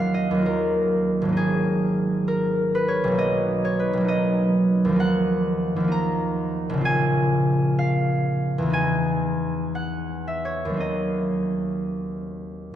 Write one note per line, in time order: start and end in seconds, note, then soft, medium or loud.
0.00 0.30 D#2 medium
0.00 0.33 F#3 soft
0.00 0.37 A#3 soft
0.00 0.41 F4 soft
0.00 0.45 A#4 medium
0.00 1.40 F5 medium
0.00 3.41 F#5 medium
0.14 3.17 D#5 medium
0.31 1.32 D#2 soft
0.31 1.24 F#3 soft
0.38 1.28 A#3 soft
0.38 1.38 F4 soft
0.46 2.27 A#4 medium
1.22 3.13 G#1 soft
1.22 3.06 F#3 soft
1.29 3.10 A#3 soft
1.29 3.13 D#4 soft
1.37 3.21 G#4 medium
2.28 6.18 A#4 medium
2.75 3.78 B4 medium
2.88 3.40 C#5 medium
3.04 3.92 B1 medium
3.04 3.96 F#3 soft
3.12 3.99 A#3 soft
3.12 4.03 D#4 soft
3.19 4.07 D#5 medium
3.65 3.89 C#5 medium
3.79 5.02 B4 medium
3.93 4.94 B1 medium
3.97 6.82 F#3 soft
3.97 4.91 A#3 soft
4.05 4.95 D#4 soft
4.05 6.88 D#5 medium
4.85 5.75 D#2 medium
4.89 5.79 F3 soft
4.89 5.83 A#3 soft
4.96 5.87 D#4 soft
4.96 6.88 F#5 loud
5.76 6.80 D#2 medium
5.76 8.71 F3 soft
5.84 8.73 A#3 soft
5.84 6.86 D#4 soft
5.92 8.77 A#5 medium
6.70 8.69 A#1 medium
6.74 8.71 C#3 medium
6.74 8.73 C4 soft
6.81 8.75 F4 soft
6.85 8.72 G#5 loud
7.79 8.77 F5 medium
8.58 10.75 E2 medium
8.62 10.77 E3 soft
8.62 10.79 B3 soft
8.70 10.76 D#4 soft
8.70 10.82 G#5 medium
9.75 10.64 F#5 medium
10.28 10.83 E5 medium
10.45 11.05 C#5 medium
10.65 12.73 D#2 soft
10.70 12.75 F#3 soft
10.70 12.75 C4 soft
10.77 12.75 D#4 soft
10.77 12.75 D#5 medium